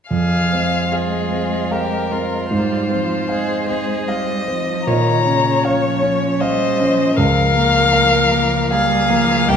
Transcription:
0.10 grand piano F2, cello F3, violin G#4 F5
0.52 cello G#3, grand piano C4
0.92 violin F4 G#4, grand piano F5
1.32 grand piano C4
1.71 violin G4 A#4, grand piano F5
2.11 grand piano C4, violin F4
2.51 grand piano G#2, cello G3, violin C5
2.90 cello F3, grand piano C4
3.29 cello G#3, violin G#4, grand piano F5
3.67 grand piano C4, violin G#4
4.08 cello G3, violin D#5, grand piano F5
4.48 cello F3, grand piano C4
4.86 grand piano A#2, cello D#3, violin C#5 A#5
5.26 cello C#3, grand piano C#4
5.65 cello F3, violin C#5, grand piano F5
6.03 grand piano C#4
6.40 cello G3, violin C5 D#5, grand piano F5
6.80 cello F3, grand piano C#4
7.17 grand piano C#2, cello F3, violin A#4 F5
7.56 grand piano A#3
7.93 grand piano F5
8.32 grand piano A#3
8.71 cello G3, violin G#4 F5, grand piano F5
9.09 cello F3, grand piano A#3
9.48 grand piano C2, cello E3, violin G4 G5

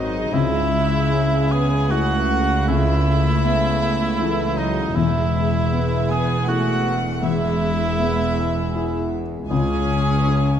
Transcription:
Already playing: double bass section G#1, grand piano G#2 C4, harp G#2 F#3 D#4 F#4, cello section D#3, viola section F#3 D#4 F#4, oboe D#4, cor anglais D#4, violin section C5 D#5
0.12 viola section C4 G#4, violin section D#5
0.32 double bass section C#2, grand piano C#2, harp C#3, cello section C#3, viola section G#3, cor anglais E4, violin section E5
0.73 harp C#4
1.12 grand piano C#4, harp G#4
1.51 viola section B3, cor anglais G#4, violin section G#5
1.90 viola section A3, grand piano E4 G#4, cor anglais F#4, violin section F#5
2.67 grand piano C#2, harp C#3, viola section A3, cor anglais E4, violin section E5
3.06 harp B3
3.44 grand piano B3, harp A4
4.20 grand piano E3 A4, harp B4
4.58 viola section F#3, cor anglais D#4, violin section D#5
4.95 double bass section E1, grand piano E2, cello section E2, harp E3, viola section G#3, cor anglais E4, violin section E5
5.35 harp E4
5.72 grand piano B3, harp B4
6.10 viola section B3, cor anglais G#4, violin section G#5, harp G#5
6.47 viola section A3, grand piano E4 G#4, cor anglais F#4, violin section F#5
6.86 harp G#4
7.22 grand piano E2, harp E3, viola section G#3, cor anglais E4, violin section E5
7.62 harp E4
7.99 grand piano B3, harp B4
8.37 harp G#5
8.75 grand piano E4 G#4
9.13 harp G#4
9.49 cello section C#2, double bass section C#2, grand piano C#2, harp C#3, viola section C#4, cor anglais G#4, violin section G#5
9.88 harp C#4
10.28 grand piano C#4, harp G#4

